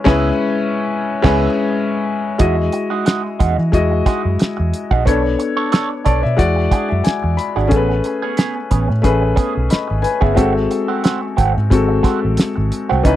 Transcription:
Already playing: grand piano G#3 C#4 E4 B4
0.04 fingered electric bass C#2, grand piano G#3 C#4 E4 B4, clean electric guitar B3 E4 G#4, kick, snare, crash
1.22 fingered electric bass C#2, grand piano G#3 C#4 E4 B4, clean electric guitar B3 E4 G#4, kick, snare, crash
2.38 fingered electric bass E2, grand piano G#3 E4 F#4 D#5, clean electric guitar G#3 D#4 F#4, kick, closed hi-hat
2.57 muted clean electric guitar stroke
2.72 muted clean electric guitar stroke, closed hi-hat
2.90 clean electric guitar G#3 D#4 F#4
3.05 clean electric guitar G#3 D#4 F#4, snare, closed hi-hat
3.23 muted clean electric guitar stroke
3.39 fingered electric bass E2, clean electric guitar G#3 D#4 F#4, kick, closed hi-hat
3.58 fingered electric bass E3, muted clean electric guitar stroke
3.72 fingered electric bass E2, grand piano G#3 E4 F#4 D#5, kick, closed hi-hat
3.91 muted clean electric guitar stroke
4.06 clean electric guitar G#3 D#4 F#4, kick, snare, closed hi-hat
4.23 fingered electric bass F#2, muted clean electric guitar stroke
4.39 muted clean electric guitar stroke, muted fingered electric bass stroke, snare, closed hi-hat
4.57 fingered electric bass E2, muted clean electric guitar stroke
4.74 closed hi-hat
4.91 fingered electric bass A#1, clean electric guitar G#3 D#4 F#4, kick
5.05 fingered electric bass B1, grand piano B3 D4 A4 C#5, clean electric guitar D4 A4 C#5, kick, closed hi-hat
5.24 muted clean electric guitar stroke
5.39 muted clean electric guitar stroke, closed hi-hat
5.57 clean electric guitar D4 A4 C#5
5.72 clean electric guitar D4 A4 C#5, snare, closed hi-hat
5.90 muted clean electric guitar stroke
6.05 fingered electric bass B1, clean electric guitar D4 A4 C#5, grand piano D5, kick, closed hi-hat
6.23 fingered electric bass B2, grand piano E5, muted clean electric guitar stroke
6.37 fingered electric bass E2, grand piano G#3 E4 F#4 D5 F#5, kick, closed hi-hat
6.56 muted clean electric guitar stroke
6.71 clean electric guitar D4 F#4 G#4, kick, closed hi-hat
6.89 fingered electric bass F#2, grand piano E5, muted clean electric guitar stroke
7.04 grand piano G#5, muted clean electric guitar stroke, muted fingered electric bass stroke, snare, closed hi-hat
7.23 fingered electric bass E2, muted clean electric guitar stroke
7.37 grand piano B5, closed hi-hat
7.56 fingered electric bass G#1, clean electric guitar D4 F#4 G#4
7.67 grand piano A3 C#4 G#4 A4, closed hi-hat
7.72 fingered electric bass A1, clean electric guitar B3 C#4 G#4, kick
7.76 grand piano B4
7.90 muted clean electric guitar stroke
8.04 muted clean electric guitar stroke, closed hi-hat
8.22 clean electric guitar B3 C#4 G#4
8.37 clean electric guitar B3 C#4 G#4, snare, closed hi-hat
8.56 muted clean electric guitar stroke
8.71 fingered electric bass A1, clean electric guitar B3 C#4 G#4, kick, closed hi-hat
8.88 fingered electric bass A2, muted clean electric guitar stroke
9.02 fingered electric bass A1, grand piano A3 C#4 G#4 B4, kick, closed hi-hat
9.21 muted clean electric guitar stroke
9.36 clean electric guitar B3 C#4 G#4, kick, closed hi-hat
9.55 fingered electric bass B1, muted clean electric guitar stroke
9.69 grand piano D#5 B5, muted clean electric guitar stroke, muted fingered electric bass stroke, snare, closed hi-hat
9.88 fingered electric bass G#1, muted clean electric guitar stroke
10.02 grand piano B4 G#5, closed hi-hat
10.21 fingered electric bass G1, clean electric guitar B3 C#4 G#4, grand piano G#4 E5, kick
10.35 fingered electric bass G#1, grand piano G#3 C4 F#4 A4, clean electric guitar A3 C4 F#4, kick, closed hi-hat
10.55 muted clean electric guitar stroke
10.71 muted clean electric guitar stroke, closed hi-hat
10.88 clean electric guitar A3 C4 F#4
11.03 clean electric guitar A3 C4 F#4, snare, closed hi-hat
11.21 muted clean electric guitar stroke
11.37 fingered electric bass G#1, clean electric guitar A3 C4 F#4, kick, closed hi-hat
11.55 fingered electric bass G#2, muted clean electric guitar stroke
11.70 fingered electric bass G#1, grand piano G#3 C4 F#4 A4, kick, closed hi-hat
11.89 muted clean electric guitar stroke
12.03 clean electric guitar A3 C4 F#4, kick, snare, closed hi-hat
12.21 fingered electric bass A1, muted clean electric guitar stroke
12.37 muted clean electric guitar stroke, snare, closed hi-hat
12.56 fingered electric bass G#1, muted clean electric guitar stroke
12.72 closed hi-hat
12.89 fingered electric bass C2, clean electric guitar A3 C4 F#4
13.03 fingered electric bass C#2, grand piano E3 C#4 D#4 B4, clean electric guitar E3 B3 D#4, kick, closed hi-hat

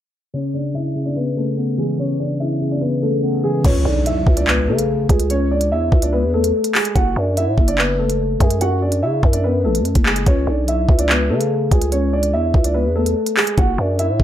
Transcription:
0.34 tine electric piano C#3, grand piano C#4 C#5
0.54 tine electric piano C#3, grand piano D4 D5
0.74 tine electric piano C#3, grand piano E4 E5
0.95 tine electric piano C#3
1.05 grand piano D4 D5
1.16 tine electric piano C#3, grand piano B3 B4
1.37 tine electric piano C#3, grand piano A3 A4
1.58 tine electric piano B3
1.78 tine electric piano E3, grand piano G#3 G#4
1.99 tine electric piano C#3, grand piano C#4 C#5
2.19 tine electric piano C#3, grand piano D4 D5
2.40 tine electric piano C#3, grand piano E4 E5
2.61 tine electric piano C#3
2.72 grand piano D4 D5
2.81 tine electric piano C#3, grand piano B3 B4
3.02 tine electric piano C#3, grand piano A3 A4
3.23 tine electric piano B3
3.44 tine electric piano E3, grand piano G#3 G#4
3.65 808-style bass C#2, grand piano C#4 C#5, kick, closed hi-hat, crash, impact
3.85 808-style bass B1, grand piano D4 D5
4.06 grand piano E4 E5, closed hi-hat
4.27 808-style bass C#2, kick
4.37 grand piano D4 D5, closed hi-hat
4.47 grand piano B3 B4, clap
4.68 808-style bass C#3, grand piano A3 A4
4.79 closed hi-hat
5.09 808-style bass C#2, grand piano G#3 G#4, kick, closed hi-hat
5.20 closed hi-hat
5.30 grand piano C#4 C#5, closed hi-hat
5.51 grand piano D4 D5
5.61 closed hi-hat
5.71 808-style bass E2, grand piano E4 E5
5.92 808-style bass C#2, kick
6.02 grand piano D4 D5, closed hi-hat
6.13 grand piano B3 B4
6.23 808-style bass E2
6.34 grand piano A3 A4
6.44 closed hi-hat
6.64 closed hi-hat
6.75 grand piano G#3 G#4, clap, open hi-hat
6.85 closed hi-hat
6.95 808-style bass F#1, grand piano F#4 F#5, kick, closed hi-hat
7.16 808-style bass F#2, grand piano D4 D5
7.37 grand piano E4 E5, closed hi-hat
7.47 808-style bass A2
7.58 808-style bass F#1, kick
7.68 grand piano D4 D5, closed hi-hat
7.78 grand piano B3 B4, clap
7.99 grand piano A3 A4
8.10 closed hi-hat
8.40 808-style bass F#2, grand piano G#3 G#4, kick, closed hi-hat
8.50 closed hi-hat
8.61 grand piano F#4 F#5, closed hi-hat
8.82 grand piano D4 D5
8.92 closed hi-hat
9.02 808-style bass C#3, grand piano E4 E5
9.23 808-style bass F#2, kick
9.33 grand piano D4 D5, closed hi-hat
9.44 grand piano B3 B4
9.64 808-style bass A1, grand piano A3 A4
9.75 closed hi-hat
9.80 808-style bass F#2
9.85 closed hi-hat
9.95 808-style bass F#1, kick, closed hi-hat
10.06 grand piano G#3 G#4, clap
10.16 closed hi-hat
10.26 808-style bass C#2, grand piano C#4 C#5, kick, closed hi-hat
10.47 808-style bass B1, grand piano D4 D5
10.68 grand piano E4 E5, closed hi-hat
10.89 808-style bass C#2, kick
10.99 grand piano D4 D5, closed hi-hat
11.09 grand piano B3 B4, clap
11.30 808-style bass C#3, grand piano A3 A4
11.41 closed hi-hat
11.71 808-style bass C#2, grand piano G#3 G#4, kick, closed hi-hat
11.82 closed hi-hat
11.92 grand piano C#4 C#5, closed hi-hat
12.13 grand piano D4 D5
12.23 closed hi-hat
12.33 808-style bass E2, grand piano E4 E5
12.54 808-style bass C#2, kick
12.64 grand piano D4 D5, closed hi-hat
12.74 grand piano B3 B4
12.85 808-style bass E2
12.96 grand piano A3 A4
13.06 closed hi-hat
13.26 closed hi-hat
13.37 grand piano G#3 G#4, clap, open hi-hat
13.47 closed hi-hat
13.58 808-style bass F#1, grand piano F#4 F#5, kick, closed hi-hat
13.78 808-style bass F#2, grand piano D4 D5
13.99 grand piano E4 E5, closed hi-hat
14.09 808-style bass A2
14.20 808-style bass F#1, kick

